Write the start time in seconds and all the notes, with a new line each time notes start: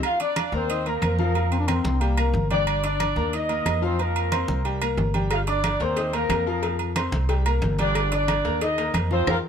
0.03 F4 F5, high conga, low agogo, claves
0.20 D4 D5 D6, high conga, low agogo
0.36 high conga, low agogo, claves
0.52 D#2 A#3 C4 A#4 C5 A#5, high conga
0.69 D#4 D#5 D#6, high conga, low agogo
0.86 A#3 A#4 A#5, high conga, low agogo
1.02 F2 A#3 A#4, high conga, low agogo, claves
1.18 F3 A#3 F4 A#4 F5, high conga
1.35 F3 F4 F5, high conga, low agogo
1.52 C4, high conga, low agogo
1.59 D4
1.67 C4 C5 C6, high conga, low agogo, claves
1.84 C2, high conga
2.01 G3 A#3 G4 G5, high conga, low agogo
2.17 A#3 A#4 A#5, high conga, low agogo, claves
2.33 G1, high conga
2.51 G3 D4 G4 D5 G5, high conga, low agogo
2.67 high conga, low agogo, claves
2.83 D4 D5 D6, high conga, low agogo
3.00 high conga, low agogo, claves
3.16 D#2 A#3 A#4 A#5, high conga
3.33 D#4 D#5 D#6, high conga, low agogo
3.49 A#3 A#4 A#5, high conga, low agogo
3.66 F2, high conga, low timbale, low agogo, claves
3.82 F3 C4 F4 C5 F5
3.98 F3 A#3 F4 A#4 F5, high conga, low agogo
4.15 high conga, low agogo
4.32 C4 C5 C6, high conga, low agogo, claves
4.48 C2, high conga
4.65 G3 G4 G5, high conga, low agogo
4.81 A#3 A#4 A#5, high conga, low agogo, claves
4.97 G1, high conga, low timbale
5.14 G3 G4 G5, high conga, low agogo
5.31 F4 F5, cowbell, high conga, low agogo, claves
5.47 D4 D5 D6, high conga, low agogo
5.64 cowbell, high conga, low agogo, claves
5.80 D#2 A#3 C4 A#4 C5 A#5, cowbell, high conga
5.97 D#4 D#5 D#6, cowbell, high conga, low agogo
6.13 A#3 A#4 A#5, cowbell, high conga, low agogo
6.30 F2, cowbell, high conga, low timbale, low agogo, claves
6.47 F3 A#3 F4 A#4 F5
6.63 F3 F4 F5, cowbell, high conga, low agogo
6.79 high conga, low agogo
6.96 C4 C5 C6, cowbell, high conga, low agogo, claves
7.12 C2, cowbell, high conga
7.29 G3 G4 G5, cowbell, high conga, low agogo
7.46 A#3 A#4 A#5, high conga, low agogo, claves
7.62 G1, cowbell, high conga
7.79 G3 D4 G4 D5 G5, cowbell, high conga, low agogo
7.95 cowbell, high conga, low agogo, claves
8.12 D4 D5 D6, high conga, low agogo
8.28 cowbell, high conga, low agogo, claves
8.45 D#2 A#3 A#4 A#5, cowbell, high conga
8.61 D#4 D#5 D#6, cowbell, high conga, low agogo
8.78 A#3 A#4 A#5, cowbell, high conga, low agogo
8.94 F2, cowbell, high conga, low agogo, claves
9.11 F3 C4 F4 C5 F5, high conga
9.27 F2 C4 F4 A#4 C5, cowbell, high conga, high timbale, claves